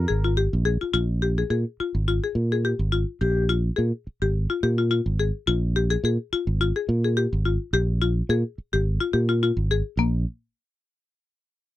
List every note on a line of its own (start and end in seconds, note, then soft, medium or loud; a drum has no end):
0.00 0.36 A#4 loud
0.08 0.47 G#1 medium
0.08 0.16 G#4 medium
0.24 0.32 F4 medium
0.37 0.45 G4 medium
0.53 0.77 A#1 medium
0.65 0.73 G#4 medium
0.81 0.89 F4 medium
0.81 muted fingered electric bass stroke soft
0.94 1.42 A#1 loud
0.94 1.02 F4 medium
1.22 1.30 G4 medium
1.38 1.46 G#4 medium
1.50 1.63 A#2 medium
1.50 1.58 G#4 medium
1.80 1.88 F4 medium
1.80 muted fingered electric bass stroke soft
1.95 2.19 G#1 medium
2.08 2.16 F4 medium
2.24 2.32 G#4 medium
2.35 2.72 A#2 medium
2.52 2.60 G#4 medium
2.65 2.73 G4 medium
2.79 3.03 G#1 medium
2.92 3.00 F4 medium
3.21 3.69 A#1 loud
3.21 3.42 G4 medium
3.49 3.57 F4 medium
3.76 3.91 A#2 medium
3.76 3.84 G#4 medium
4.07 muted fingered electric bass stroke soft
4.22 4.46 G#1 medium
4.22 4.30 G4 medium
4.50 4.58 F4 medium
4.63 5.00 A#2 medium
4.63 4.71 G4 medium
4.78 4.86 F4 medium
4.91 4.99 F4 medium
5.06 5.30 G#1 medium
5.20 5.28 G#4 medium
5.47 5.95 A#1 loud
5.47 5.55 F4 medium
5.76 5.84 G4 medium
5.90 5.98 G#4 medium
6.04 6.17 A#2 medium
6.04 6.13 G#4 medium
6.33 6.41 F4 medium
6.33 muted fingered electric bass stroke soft
6.47 6.71 G#1 medium
6.61 6.69 F4 medium
6.76 6.84 G#4 medium
6.89 7.25 A#2 medium
7.04 7.12 G#4 medium
7.17 7.25 G4 medium
7.33 7.56 G#1 medium
7.45 7.53 F4 medium
7.73 8.21 A#1 loud
7.73 7.82 G4 medium
8.02 8.10 F4 medium
8.29 8.42 A#2 medium
8.29 8.38 G#4 medium
8.58 muted fingered electric bass stroke soft
8.73 8.97 G#1 medium
8.73 8.81 G4 medium
9.00 9.08 F4 medium
9.13 9.51 A#2 medium
9.13 9.21 G4 medium
9.29 9.37 F4 medium
9.43 9.51 F4 medium
9.57 9.81 G#1 medium
9.71 9.79 G#4 medium
9.97 10.24 A#1 loud
9.97 10.07 A#3 medium